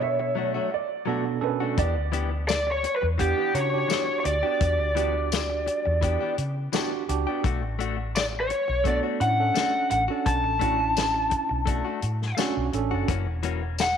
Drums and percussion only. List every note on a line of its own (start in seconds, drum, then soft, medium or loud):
1.78 kick loud
1.78 closed hi-hat medium
2.13 closed hi-hat medium
2.49 snare loud
2.49 closed hi-hat medium
2.49 tambourine loud
2.84 closed hi-hat medium
3.19 kick medium
3.19 closed hi-hat medium
3.55 closed hi-hat medium
3.90 snare medium
3.90 closed hi-hat medium
3.90 tambourine medium
4.25 closed hi-hat medium
4.61 kick loud
4.61 closed hi-hat medium
4.96 closed hi-hat medium
5.32 snare medium
5.32 closed hi-hat medium
5.32 tambourine loud
5.67 closed hi-hat medium
6.02 kick medium
6.02 closed hi-hat medium
6.38 closed hi-hat medium
6.73 snare medium
6.73 closed hi-hat medium
6.73 tambourine loud
7.09 closed hi-hat medium
7.44 kick loud
7.44 closed hi-hat medium
7.80 closed hi-hat medium
8.16 snare loud
8.16 closed hi-hat medium
8.16 tambourine loud
8.50 closed hi-hat soft
8.85 kick medium
8.85 closed hi-hat medium
9.21 closed hi-hat medium
9.55 snare medium
9.55 closed hi-hat medium
9.55 tambourine medium
9.90 closed hi-hat soft
10.26 kick loud
10.26 closed hi-hat medium
10.61 kick medium
10.61 closed hi-hat medium
10.97 snare medium
10.97 closed hi-hat medium
10.97 tambourine medium
11.31 kick medium
11.31 closed hi-hat medium
11.67 kick medium
11.67 closed hi-hat medium
12.02 closed hi-hat medium
12.22 snare soft
12.38 snare medium
12.38 closed hi-hat medium
12.38 tambourine medium
12.73 closed hi-hat medium
13.08 kick loud
13.08 closed hi-hat medium
13.43 closed hi-hat medium
13.78 snare medium
13.78 closed hi-hat medium
13.78 tambourine loud